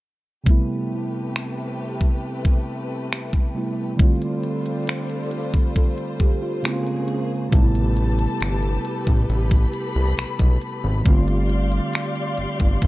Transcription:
0.44 tine electric piano C3 G3 A3, string section C3 A3 G4 B4, kick
0.49 tine electric piano B3 E4
1.36 finger snap
2.01 kick
2.45 kick
3.13 finger snap
3.33 kick
3.54 tine electric piano C3 G3 A3 B3 E4
3.96 tine electric piano D3 G3 A3, string section D3 G3 F4 C5, kick, closed hi-hat
4.02 tine electric piano C4 F4
4.22 closed hi-hat
4.44 closed hi-hat
4.66 closed hi-hat
4.87 finger snap, closed hi-hat
5.10 closed hi-hat
5.31 closed hi-hat
5.54 kick, closed hi-hat
5.76 tine electric piano A4, kick, closed hi-hat
5.98 closed hi-hat
6.20 tine electric piano G4, kick, closed hi-hat
6.42 tine electric piano F4
6.63 tine electric piano C#3 G#3 A#3 C4 E4, string section C#3 A#3 G#4, finger snap, closed hi-hat
6.73 tine electric piano F4
6.87 closed hi-hat
7.08 closed hi-hat
7.50 analog synth bass A1, tine electric piano C3 G3 A3, string section G4 A4 B4 A5, kick, closed hi-hat
7.55 tine electric piano B3 D#4
7.63 tine electric piano E4
7.75 closed hi-hat
7.97 closed hi-hat
8.19 closed hi-hat
8.41 analog synth bass G1, finger snap, closed hi-hat
8.63 closed hi-hat
8.85 closed hi-hat
9.07 analog synth bass A1, kick, closed hi-hat
9.29 analog synth bass A1, string section B5, closed hi-hat
9.51 kick, closed hi-hat
9.74 closed hi-hat
9.96 analog synth bass C2
10.18 analog synth bass B1, finger snap, closed hi-hat
10.39 analog synth bass B1, kick, closed hi-hat
10.62 closed hi-hat
10.84 analog synth bass G#1
11.03 analog synth bass G1, tine electric piano D3 G3 A3, string section G4 D5 F5 C6, kick, closed hi-hat
11.08 tine electric piano C4 F4
11.28 closed hi-hat
11.49 closed hi-hat
11.72 closed hi-hat
11.94 finger snap, closed hi-hat
12.16 closed hi-hat
12.38 analog synth bass G1, closed hi-hat
12.60 analog synth bass G1, kick, closed hi-hat
12.82 analog synth bass A1, kick, closed hi-hat

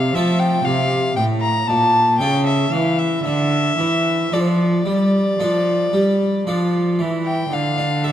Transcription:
Already playing: harpsichord C3, cello C3, violin F5
0.15 cello F3, harpsichord F3 A3 C4 A4, violin E5
0.40 violin G5
0.65 cello C3, harpsichord C3, violin F5
1.16 harpsichord A2, cello A2, violin G5
1.41 violin A#5
1.68 cello A#2, harpsichord A#2, violin A5
2.19 cello C#3, harpsichord C#3 C#4 A4, violin G5
2.46 violin E5
2.71 cello E3, harpsichord E3, violin F5
2.99 violin E5
3.24 cello D3, harpsichord D3, violin E5
3.78 cello E3, harpsichord E3
4.32 cello F3, harpsichord F3 D4 A4, violin D5
4.40 violin C5
4.48 violin D5
4.85 cello G3, harpsichord G3
5.40 cello F3, harpsichord F3 D4 A4
5.93 harpsichord G3, cello G3
6.47 harpsichord F3 D4 A4, cello F3
6.99 harpsichord E3, cello E3
7.26 violin G5
7.52 harpsichord D3, cello D3, violin F5
7.78 harpsichord D4
8.04 harpsichord A4, violin E5

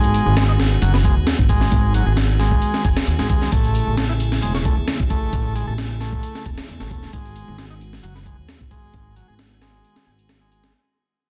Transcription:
Already playing: upright bass G#1, tonewheel organ D#3 B3 F#4 G#4, transistor combo organ G#3
0.04 closed hi-hat
0.14 closed hi-hat
0.26 upright bass G#1
0.37 transistor combo organ G#3, snare, closed hi-hat
0.48 transistor combo organ D#4
0.59 snare, closed hi-hat
0.82 upright bass F#1, transistor combo organ F#3, closed hi-hat
0.94 transistor combo organ B3, snare
1.04 transistor combo organ G#3, kick, closed hi-hat
1.16 upright bass D#2
1.27 snare, closed hi-hat
1.39 upright bass G#1, kick
1.49 transistor combo organ G#3, kick, closed hi-hat
1.61 snare
1.72 upright bass G#1, kick, closed hi-hat
1.94 transistor combo organ F#3, closed hi-hat
2.06 upright bass G#1, transistor combo organ G#4
2.17 snare, closed hi-hat
2.39 transistor combo organ G#3, snare, closed hi-hat
2.51 kick
2.62 closed hi-hat
2.74 snare
2.85 upright bass F#1, transistor combo organ G#4, kick, closed hi-hat
2.97 muted upright bass stroke, snare
3.07 upright bass D#2, closed hi-hat
3.19 upright bass G#1, transistor combo organ G#3, snare
3.29 upright bass D#2, transistor combo organ G#3, kick, closed hi-hat
3.42 snare
3.52 upright bass A1, tonewheel organ C#3 A3 E4 G#4, transistor combo organ A3, kick, closed hi-hat
3.64 closed hi-hat
3.75 closed hi-hat
3.87 upright bass A1
3.97 transistor combo organ A3, snare, closed hi-hat
4.09 transistor combo organ E4
4.20 closed hi-hat
4.32 snare
4.42 upright bass E1, transistor combo organ G#3, closed hi-hat
4.54 transistor combo organ C#4, snare
4.65 transistor combo organ A3, kick, closed hi-hat
4.77 upright bass E2
4.88 snare, closed hi-hat
5.00 upright bass A1, kick
5.10 transistor combo organ A3, kick, closed hi-hat
5.33 upright bass A1, kick, closed hi-hat
5.55 transistor combo organ G#3, closed hi-hat
5.67 upright bass A1, transistor combo organ A4
5.78 snare, closed hi-hat
6.00 transistor combo organ A3, snare, closed hi-hat
6.13 kick
6.23 closed hi-hat
6.35 snare
6.46 upright bass E1, transistor combo organ A4, kick, closed hi-hat
6.58 muted upright bass stroke, snare
6.68 upright bass E2, closed hi-hat
6.80 upright bass A1, transistor combo organ A3, snare
6.91 upright bass E1, transistor combo organ A3, kick, closed hi-hat
7.03 snare
7.13 upright bass G#1, tonewheel organ D#3 G#3 B3 F#4, transistor combo organ G#3, kick, closed hi-hat
7.25 closed hi-hat
7.36 closed hi-hat
7.48 upright bass G#1
7.58 transistor combo organ G#3, snare, closed hi-hat
7.70 transistor combo organ D#4
7.81 closed hi-hat
7.93 snare
8.03 upright bass F#1, transistor combo organ F#3, closed hi-hat
8.15 transistor combo organ B3, snare
8.26 transistor combo organ G#3, kick, closed hi-hat
8.38 upright bass D#2
8.49 snare, closed hi-hat
8.61 upright bass G#1, kick
8.71 transistor combo organ G#3, kick, closed hi-hat
8.94 upright bass G#1, kick, closed hi-hat
9.16 transistor combo organ F#3, closed hi-hat
9.28 upright bass G#1, transistor combo organ G#4
9.39 snare, closed hi-hat
9.61 transistor combo organ G#3, snare, closed hi-hat
9.84 closed hi-hat
9.96 snare, closed hi-hat
10.07 upright bass G#1, transistor combo organ G#4
10.19 closed hi-hat
10.29 snare, closed hi-hat
10.41 transistor combo organ G#3
10.51 transistor combo organ G#3, closed hi-hat
10.64 snare, closed hi-hat

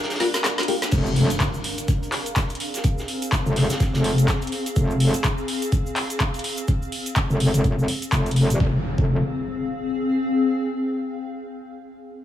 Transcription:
Already playing: analog synth pad G3 G4 A#4 F5, ambient pad D4 A#4 F5
0.03 snare, closed hi-hat
0.10 snare, closed hi-hat, cabasa
0.15 snare, closed hi-hat
0.20 synth stab A#3 F4 G4, snare, closed hi-hat, open hi-hat
0.34 snare, closed hi-hat, cabasa
0.44 snare, clap, closed hi-hat, cabasa
0.58 snare, closed hi-hat, cabasa
0.63 closed hi-hat
0.68 synth stab A#3 F4 G4, closed hi-hat, open hi-hat
0.82 snare, closed hi-hat, cabasa
0.91 wobble bass F1, ambient pad C4, kick, closed hi-hat, crash, impact, cabasa
1.06 closed hi-hat, cabasa
1.10 ambient pad G#4
1.16 closed hi-hat, open hi-hat
1.22 ambient pad F5
1.30 closed hi-hat, cabasa
1.40 kick, snare, clap, closed hi-hat, cabasa
1.54 cabasa
1.64 closed hi-hat, open hi-hat
1.78 closed hi-hat, cabasa
1.88 kick, closed hi-hat, cabasa
2.03 closed hi-hat, cabasa
2.11 snare, clap, closed hi-hat, open hi-hat
2.26 closed hi-hat, cabasa
2.36 kick, snare, clap, closed hi-hat, cabasa
2.50 closed hi-hat, cabasa
2.55 closed hi-hat
2.60 closed hi-hat, open hi-hat
2.74 snare, closed hi-hat, cabasa
2.84 kick, closed hi-hat, cabasa
2.98 snare, cabasa
3.08 closed hi-hat, open hi-hat
3.22 closed hi-hat, cabasa
3.31 kick, snare, clap, closed hi-hat, cabasa
3.46 wobble bass F1, cabasa
3.56 snare, closed hi-hat, open hi-hat
3.70 snare, closed hi-hat, cabasa
3.80 kick, snare, closed hi-hat, cabasa
3.93 wobble bass F1, snare, closed hi-hat, cabasa
4.04 closed hi-hat, open hi-hat
4.18 closed hi-hat, cabasa
4.28 kick, snare, clap, closed hi-hat, cabasa
4.42 closed hi-hat, cabasa
4.47 closed hi-hat
4.52 closed hi-hat, open hi-hat
4.66 closed hi-hat, cabasa
4.76 wobble bass F1, kick, closed hi-hat, cabasa
4.90 cabasa
5.00 open hi-hat
5.14 closed hi-hat, cabasa
5.24 kick, clap, closed hi-hat, cabasa
5.38 cabasa
5.48 open hi-hat
5.62 closed hi-hat, cabasa
5.72 kick, closed hi-hat, cabasa
5.86 cabasa
5.96 clap, open hi-hat
6.10 closed hi-hat, cabasa
6.20 kick, clap, closed hi-hat, cabasa
6.34 closed hi-hat, cabasa
6.39 closed hi-hat
6.44 open hi-hat
6.57 closed hi-hat, cabasa
6.68 kick, closed hi-hat, cabasa
6.82 cabasa
6.92 open hi-hat
7.06 closed hi-hat, cabasa
7.16 kick, clap, closed hi-hat, cabasa
7.30 wobble bass F1, cabasa
7.40 open hi-hat
7.54 wobble bass F1, closed hi-hat, cabasa
7.64 kick, closed hi-hat, cabasa
7.79 cabasa
7.88 open hi-hat
8.02 closed hi-hat, cabasa
8.12 wobble bass F1, kick, clap, closed hi-hat, cabasa
8.26 closed hi-hat, cabasa
8.31 closed hi-hat
8.36 open hi-hat
8.50 wobble bass D#1, closed hi-hat, cabasa
8.60 wobble bass F1, ambient pad C4, kick, impact
8.69 ambient pad G#4
8.76 ambient pad F5
8.82 ambient pad G5
8.98 wobble bass F1, kick

